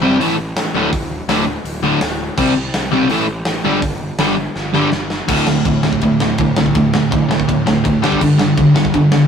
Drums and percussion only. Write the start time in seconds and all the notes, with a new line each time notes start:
0.21 open hi-hat
0.57 snare, open hi-hat
0.93 kick, open hi-hat
1.29 snare, open hi-hat
1.65 open hi-hat
2.01 snare, open hi-hat
2.38 kick, crash
2.74 snare, open hi-hat
3.09 open hi-hat
3.45 snare, open hi-hat
3.82 kick, open hi-hat
4.19 snare, open hi-hat
4.56 snare
4.74 snare
4.92 snare
5.10 snare
5.28 kick, crash
5.47 snare
5.65 kick, ride
5.83 snare
5.93 kick
6.01 kick, ride
6.20 snare
6.38 kick, ride
6.56 snare
6.66 kick
6.75 kick, ride
6.94 snare
7.12 kick, ride
7.31 snare
7.40 kick
7.49 kick, ride
7.67 snare
7.85 kick, ride
8.04 snare
8.12 kick
8.21 kick, crash
8.39 snare
8.57 kick, ride
8.76 snare
8.85 kick
8.94 kick, ride
9.12 snare